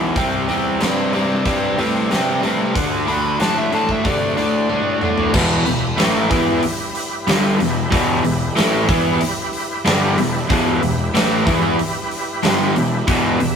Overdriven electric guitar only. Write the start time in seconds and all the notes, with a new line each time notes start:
Already playing: E2 B2 E3
0.17 C3 G3 C4
0.48 C3 G3 C4
0.80 C3 G3 C4
1.13 C3 G3 C4
1.45 C3 G3 C4
1.77 C3 G3 C4
2.10 C3 G3 C4
2.42 C3 G3 C4
2.75 D3 A3 D4
3.07 D3 A3 D4
3.40 D3 A3 D4
3.72 D3 A3 D4
4.04 D3 A3 D4
4.37 D3 A3 D4
4.69 D3 A3 D4
5.02 D3 A3 D4
5.33 E2 B2 E3
5.66 E2 B2
5.98 A2 E3 A3
6.30 E3 B3 E4
6.63 muted overdriven electric guitar stroke
7.27 G2 D3 G3
7.59 E2 B2
7.91 E2 B2 E3
8.23 E2 B2
8.56 A2 E3 A3
8.89 E3 B3 E4
9.21 muted overdriven electric guitar stroke
9.85 G2 D3 G3
10.17 E2 B2
10.49 E2 B2 E3
10.82 E2 B2
11.14 A2 E3 A3
11.47 E3 B3 E4
11.79 muted overdriven electric guitar stroke
12.43 G2 D3 G3
12.76 E2 B2
13.08 E2 B2 E3
13.40 E2 B2